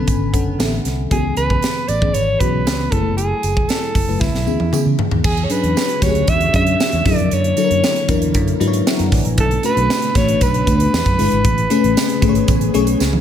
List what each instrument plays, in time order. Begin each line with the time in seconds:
Already playing: fm electric piano D3 B3 C#4 A4 B5, alto saxophone B4
0.07 fingered electric bass G#1, fm electric piano G#5, kick, closed hi-hat, tambourine
0.33 fingered electric bass F#1, fm electric piano D3 B3 C#4 A4 F#5, kick, closed hi-hat, tambourine
0.59 fingered electric bass A1, fm electric piano D3 B3 C#4 A4 E5, snare, closed hi-hat, tambourine
0.85 fingered electric bass C2, snare, closed hi-hat
1.10 fingered electric bass C#2, fm electric piano E3 B3 C#4 F#4, alto saxophone G#4, kick, closed hi-hat, tambourine
1.18 fm electric piano G#4
1.37 fingered electric bass C#2, alto saxophone B4, closed hi-hat, tambourine
1.50 kick
1.62 snare, closed hi-hat, tambourine
1.88 fingered electric bass A1, alto saxophone D5, closed hi-hat, tambourine
2.01 fm electric piano E3 B3 C#4 G#4, kick
2.14 fingered electric bass G#1, alto saxophone C#5, closed hi-hat, tambourine
2.39 fingered electric bass B1, fm electric piano E3 B3 C#4 F#4, alto saxophone B4, kick, closed hi-hat, tambourine
2.66 fingered electric bass C#2, fm electric piano E3 B3 C#4 G#4, snare, closed hi-hat, tambourine
2.91 fingered electric bass F#1, fm electric piano F#3 G#3 E4 G#4, alto saxophone A4, kick, closed hi-hat
2.98 fm electric piano A3
3.17 alto saxophone G#4, closed hi-hat
3.43 fingered electric bass F#1, closed hi-hat, tambourine
3.57 kick
3.68 alto saxophone A4, snare, closed hi-hat, tambourine
3.95 fingered electric bass F#1, kick, open hi-hat, tambourine
4.07 fm electric piano F#3 A3 E4 B4
4.20 fingered electric bass C#2, alto saxophone E4, kick, snare, tambourine
4.34 fingered electric bass B1, snare
4.46 fingered electric bass D2, fm electric piano E3 B3 C#4 G#4, tambourine
4.60 fingered electric bass E2, high tom
4.72 fm electric piano E3 B3 C#4 G#4, mid tom, tambourine
4.86 fingered electric bass C#3
4.99 floor tom
5.11 fingered electric bass D#2, floor tom
5.24 fingered electric bass E2, string machine D3 G#3 F#4 C#5, alto saxophone G#4, kick, crash, tambourine
5.37 closed hi-hat
5.44 alto saxophone C#5
5.49 fm electric piano F#3 C#4 D4 G#4, alto saxophone B4, closed hi-hat, tambourine
5.63 fingered electric bass E2, closed hi-hat
5.77 snare, tambourine
5.89 closed hi-hat
6.01 fingered electric bass D2, fm electric piano F#3 C#4 D4 G4, alto saxophone C#5, kick, snare, closed hi-hat, tambourine
6.09 fm electric piano G#4
6.15 closed hi-hat
6.28 fingered electric bass E2, alto saxophone E5, kick, closed hi-hat, tambourine
6.41 closed hi-hat
6.53 fingered electric bass F#2, fm electric piano F#3 C#4 D4 G#4, alto saxophone E5, kick, closed hi-hat, tambourine
6.67 closed hi-hat
6.80 snare, tambourine
6.92 fingered electric bass E2, closed hi-hat
7.05 fingered electric bass F#2, fm electric piano F#3 D4 E4 G#4, string machine A#3 E4, alto saxophone D5, kick, snare, open hi-hat, tambourine
7.12 fm electric piano A#4
7.18 fingered electric bass F2, closed hi-hat
7.31 fingered electric bass F#2, alto saxophone C#5, closed hi-hat, tambourine
7.44 closed hi-hat
7.57 fm electric piano F#3 D4 E4 A4, closed hi-hat, tambourine
7.64 fm electric piano A#4
7.71 fingered electric bass F#2, closed hi-hat
7.84 snare, tambourine
7.96 closed hi-hat
8.08 fingered electric bass E2, fm electric piano F#3 D4 E4 A#4, kick, closed hi-hat, tambourine
8.22 closed hi-hat
8.34 fingered electric bass F#2, kick, closed hi-hat, tambourine
8.48 closed hi-hat
8.60 fingered electric bass G#2, fm electric piano F#3 D4 E4 B4 A#5, closed hi-hat, tambourine
8.67 fm electric piano C#5
8.73 closed hi-hat
8.86 fm electric piano A#4 E5 F#5, snare, tambourine
8.99 fingered electric bass F#2, fm electric piano C#5 F#5, closed hi-hat
9.12 fingered electric bass A1, fm electric piano D5 E5 G#5, kick, snare, open hi-hat, tambourine
9.25 fingered electric bass A#1, fm electric piano E5 A#5, closed hi-hat
9.38 fingered electric bass B1, string machine B2 A3 D4, alto saxophone A4, kick, closed hi-hat
9.51 closed hi-hat
9.63 fm electric piano A3 C#4 F#4 B4, alto saxophone B4, closed hi-hat, tambourine
9.70 fm electric piano D4
9.77 fingered electric bass B1, closed hi-hat
9.90 snare, tambourine
10.02 closed hi-hat
10.15 fingered electric bass A1, fm electric piano A3 D4 F#4 B4, alto saxophone C#5, kick, snare, closed hi-hat, tambourine
10.28 closed hi-hat
10.41 fingered electric bass B1, alto saxophone B4, kick, closed hi-hat, tambourine
10.54 closed hi-hat
10.66 fingered electric bass D2, fm electric piano A3 D4 F#4 B4, kick, closed hi-hat, tambourine
10.80 closed hi-hat
10.93 fingered electric bass E2, string machine D3 G#3 E4, snare, tambourine
11.06 fingered electric bass F#2, kick, closed hi-hat
11.18 fingered electric bass G1, fm electric piano G#3 D4 E4 B4, open hi-hat, tambourine
11.32 fingered electric bass G#1, closed hi-hat
11.44 fingered electric bass A1, string machine C#3 B3 G#4, kick, closed hi-hat, tambourine
11.58 closed hi-hat
11.70 fm electric piano A3 C#4 G#4 B4, closed hi-hat, tambourine
11.84 fingered electric bass A1, closed hi-hat
11.97 snare, tambourine
12.09 closed hi-hat
12.22 fingered electric bass G#1, fm electric piano A3 C#4 G#4 C5, kick, closed hi-hat, tambourine
12.29 fm electric piano C#5
12.35 closed hi-hat
12.48 fingered electric bass A1, kick, closed hi-hat, tambourine
12.61 closed hi-hat
12.74 fingered electric bass B1, fm electric piano A3 C#4 G#4 C#5, closed hi-hat, tambourine
12.87 closed hi-hat
12.99 fingered electric bass C#2, string machine E4, snare, tambourine
13.13 fingered electric bass D2, high tom